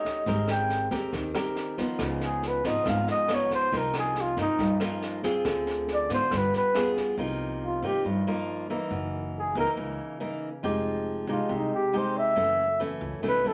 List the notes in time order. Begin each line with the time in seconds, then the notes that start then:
Already playing: A3 D#4 G4 C#5 D#5
0.05 kick, snare
0.26 G#1 G#3 C4 G4 A#4, kick, snare
0.48 G5, cross-stick, snare
0.70 snare
0.91 D#2 C4 G4 A#4, kick, snare
1.13 D#2 D#3, kick, snare
1.35 C4 G4 A#4, cross-stick, snare
1.56 snare
1.78 F3 B3 D#4, kick, snare
1.99 C#2 C#3, kick, cross-stick, snare
2.21 G#4, snare
2.43 snare
2.48 B4
2.64 G#1 F3 B3 D#4 D#5, kick, snare
2.86 G#1 G#2 F5, kick, cross-stick, snare
3.07 D#5, snare
3.28 F3 B3 D#4, cross-stick, snare
3.34 C#5
3.50 kick, snare
3.55 C5
3.72 C2 C3 F3 A#3 D#4, kick, snare
3.77 A#4
3.94 cross-stick, snare
3.98 G#4
4.15 snare
4.21 F4
4.37 G2 F3 A#3 D#4, kick, snare
4.41 D#4
4.59 G2, kick, snare
4.80 F3 A#3 D#4, cross-stick, snare
5.02 snare
5.23 C4 F4 G#4, kick, snare
5.45 D2 D3, kick, cross-stick, snare
5.66 snare
5.88 snare
5.93 D5
6.09 G#2 B3 F4, kick, snare
6.14 C5
6.31 G1 G3, kick, cross-stick, snare
6.37 B4
6.53 B4, snare
6.75 B3 F4 G#4, cross-stick, snare
6.96 kick, snare
7.17 C2 C3 F3 A#3 D#4
7.66 F4
7.82 G2 F3 A#3 D#4 G4
8.05 G2
8.27 F3 A#3 D#4
8.70 E3 A#3 D#4
8.91 F#1 F#2
9.39 G#4
9.55 C#2 E3 A#3 D#4 A#4
9.77 C#2 C#3
10.20 E3 A#3 D#4
10.63 F1 F3 G#3 D#4 G4
11.27 C2 G#3 D#4 G4
11.31 F4
11.49 C2 C3
11.56 D#4
11.74 G4
11.93 G#3 D#4 G4
11.98 C5
12.18 E5
12.35 F#1 F#2 E3 A3 C#4
12.80 E3 A3 C#4
13.01 C#2
13.22 B1 B2 D#3 A3 C#4
13.28 B4
13.44 D#3 A3 C#4 A4